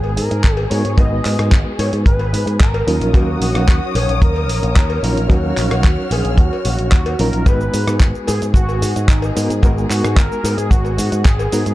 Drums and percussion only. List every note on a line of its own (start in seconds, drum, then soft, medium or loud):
0.04 cowbell medium
0.17 open hi-hat loud
0.31 closed hi-hat medium
0.44 kick loud
0.44 clap loud
0.44 closed hi-hat medium
0.57 cowbell medium
0.71 open hi-hat medium
0.85 closed hi-hat medium
0.98 kick loud
0.98 closed hi-hat medium
0.98 cowbell medium
1.25 clap medium
1.25 open hi-hat loud
1.39 cross-stick medium
1.39 closed hi-hat soft
1.39 cowbell medium
1.52 kick loud
1.52 clap loud
1.52 closed hi-hat medium
1.79 open hi-hat medium
1.79 cowbell medium
1.93 closed hi-hat medium
2.06 kick loud
2.06 closed hi-hat medium
2.19 cowbell medium
2.34 open hi-hat loud
2.47 closed hi-hat medium
2.60 kick loud
2.60 clap loud
2.60 closed hi-hat medium
2.74 cowbell medium
2.88 open hi-hat medium
3.01 closed hi-hat medium
3.14 kick loud
3.14 closed hi-hat medium
3.14 cowbell loud
3.42 open hi-hat loud
3.55 cross-stick medium
3.55 closed hi-hat soft
3.55 cowbell medium
3.68 kick loud
3.68 clap loud
3.68 closed hi-hat medium
3.95 open hi-hat medium
3.95 cowbell medium
4.09 closed hi-hat medium
4.22 kick loud
4.22 closed hi-hat medium
4.36 cowbell medium
4.49 open hi-hat loud
4.63 closed hi-hat medium
4.76 kick loud
4.76 clap loud
4.76 closed hi-hat medium
4.90 cowbell medium
5.04 open hi-hat loud
5.17 closed hi-hat soft
5.30 kick loud
5.30 closed hi-hat medium
5.30 cowbell medium
5.57 clap medium
5.57 open hi-hat loud
5.71 cross-stick medium
5.71 closed hi-hat soft
5.71 cowbell medium
5.84 kick loud
5.84 clap loud
5.84 closed hi-hat medium
6.11 open hi-hat medium
6.11 cowbell medium
6.25 closed hi-hat soft
6.38 kick loud
6.38 closed hi-hat medium
6.53 cowbell medium
6.65 open hi-hat loud
6.79 closed hi-hat soft
6.92 kick loud
6.92 clap loud
6.92 closed hi-hat medium
7.06 closed hi-hat soft
7.06 cowbell medium
7.19 open hi-hat medium
7.33 closed hi-hat medium
7.46 kick loud
7.46 closed hi-hat medium
7.46 cowbell loud
7.46 shaker soft
7.61 shaker soft
7.74 open hi-hat loud
7.74 shaker medium
7.88 cross-stick medium
7.88 closed hi-hat soft
7.88 cowbell medium
7.88 shaker soft
8.00 kick loud
8.00 clap loud
8.00 closed hi-hat medium
8.00 shaker soft
8.15 shaker soft
8.27 open hi-hat medium
8.27 cowbell medium
8.27 shaker medium
8.42 closed hi-hat soft
8.42 shaker soft
8.54 kick loud
8.54 closed hi-hat medium
8.54 shaker soft
8.69 cowbell medium
8.69 shaker soft
8.82 open hi-hat loud
8.82 shaker medium
8.96 closed hi-hat soft
8.96 shaker soft
9.08 kick loud
9.08 clap loud
9.08 closed hi-hat medium
9.08 shaker soft
9.22 cowbell medium
9.22 shaker soft
9.37 open hi-hat medium
9.37 shaker medium
9.50 closed hi-hat soft
9.50 shaker soft
9.63 kick loud
9.63 closed hi-hat medium
9.63 cowbell medium
9.63 shaker soft
9.78 shaker soft
9.91 clap medium
9.91 open hi-hat loud
9.91 shaker medium
10.04 cross-stick medium
10.04 closed hi-hat medium
10.04 cowbell medium
10.04 shaker soft
10.17 kick loud
10.17 clap loud
10.17 closed hi-hat medium
10.17 shaker soft
10.32 shaker soft
10.45 open hi-hat medium
10.45 cowbell medium
10.45 shaker medium
10.58 closed hi-hat medium
10.58 shaker soft
10.71 kick loud
10.71 closed hi-hat medium
10.71 shaker soft
10.85 cowbell medium
10.85 shaker soft
10.98 open hi-hat loud
10.98 shaker medium
11.12 closed hi-hat medium
11.12 shaker soft
11.25 kick loud
11.25 clap loud
11.25 closed hi-hat medium
11.25 shaker soft
11.39 cowbell medium
11.39 shaker soft
11.52 open hi-hat medium
11.52 shaker medium
11.66 closed hi-hat medium
11.66 shaker soft